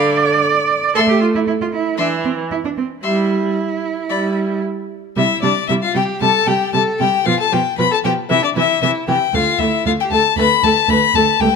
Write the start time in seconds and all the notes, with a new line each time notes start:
Already playing: D3 D5 F5 B5
0.95 A3 A4 E5 C6
1.09 G4
1.21 F4
1.35 E4
1.47 E4
1.61 F4
1.73 E4
1.97 E3 D4 E5 C6
2.25 C4
2.51 E4
2.65 D4
2.77 C4
3.03 G3 E4 E5 C6
4.10 G3 D5 B5
5.17 C3 G3 E4 E5
5.43 C3 G3 D4 D5
5.68 C3 G3 E4 E5
5.83 F4 F5
5.95 C3 G3 G4 G5
6.21 C3 G3 A4 A5
6.47 C3 G3 G4 G5
6.73 C3 G3 A4 A5
6.99 C3 G3 G4 G5
7.26 B2 F3 F4 F5
7.40 A4 A5
7.52 B2 F3 G4 G5
7.78 B2 F3 B4 B5
7.91 A4 A5
8.04 B2 F3 G4 G5
8.30 C3 E3 E4 E5
8.43 D4 D5
8.55 C3 E3 E4 E5
8.82 C3 E3 E4 E5
9.07 C3 E3 G4 G5
9.34 D2 A3 F4 F5
9.59 D2 A3 E4 E5
9.85 D2 A3 F4 F5
10.00 G4 G5
10.11 D2 A3 A4 A5
10.37 D2 A3 B4 B5
10.63 D2 A3 A4 A5
10.89 D2 A3 B4 B5
11.14 D2 A3 A4 A5
11.40 C#2 A3 G4 G5